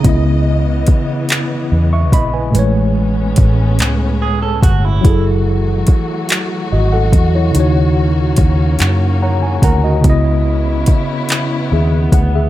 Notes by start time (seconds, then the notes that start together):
Already playing: C#3 D#5
0.01 C#3 B3, kick, closed hi-hat
0.05 C#2 E3 B3 E4
0.09 D#5
0.87 muted fingered electric bass stroke, kick, closed hi-hat
1.29 clap, closed hi-hat
1.72 E2
1.93 E5 C#6
2.12 A#1 D#5 B5, kick, closed hi-hat
2.34 B4 G#5
2.51 A2 G#3
2.55 A1 A2 G#3 B3 C#4 B4, closed hi-hat
2.59 C#5
3.36 A1, kick, closed hi-hat
3.79 C#2, clap, closed hi-hat
4.22 G#4
4.42 A4
4.63 G1 F#4, kick, closed hi-hat
4.85 E4
5.01 E3 F#3 A3 E4 F#4, kick, closed hi-hat
5.05 F#1 G#4
5.09 A4
5.87 kick, closed hi-hat
6.29 clap, closed hi-hat
6.72 G#1 F#4 D#5
6.93 A4 F#5
7.13 E2, kick, closed hi-hat
7.35 E4 C#5
7.51 C#3 A#3 C#4 D#4, closed hi-hat
7.56 D#2 F#4
7.60 C#5
8.37 D#2, kick, closed hi-hat
8.79 F#2, clap, closed hi-hat
9.22 C#5 F#5 A#5
9.43 G#5
9.62 D2 A#4 F#5 A#5, kick, closed hi-hat
9.84 F#4 D#5
10.01 C#2 C#3 B3, kick, closed hi-hat
10.05 B3 C#4 E4
10.10 D#5
10.86 kick, closed hi-hat
11.29 clap, closed hi-hat
11.72 D#2 G#4 E5
12.12 D2 F#5, kick, closed hi-hat
12.35 G#4 E5